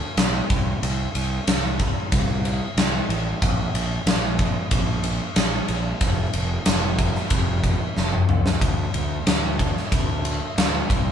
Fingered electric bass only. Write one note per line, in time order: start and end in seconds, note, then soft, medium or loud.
0.17 0.41 B1 medium
0.50 0.73 C2 medium
0.82 1.06 C2 loud
1.15 1.38 C2 medium
1.47 1.94 C2 medium
2.13 2.59 C2 loud
2.77 3.00 C2 medium
3.09 3.33 A1 medium
3.42 3.66 A#1 medium
3.74 3.98 A#1 medium
4.06 4.53 A#1 medium
4.72 5.19 A#1 medium
5.37 5.60 A#1 medium
5.69 5.92 A#1 medium
6.01 6.25 F1 loud
6.34 6.57 F1 medium
6.67 7.14 F1 medium
7.31 7.78 F1 medium
7.97 8.21 F1 medium
8.29 8.53 C#2 medium
8.62 8.85 D2 medium
8.95 9.18 D2 medium
9.27 9.74 D2 medium
9.92 10.39 D2 medium
10.58 10.81 D2 medium
10.90 11.12 C2 medium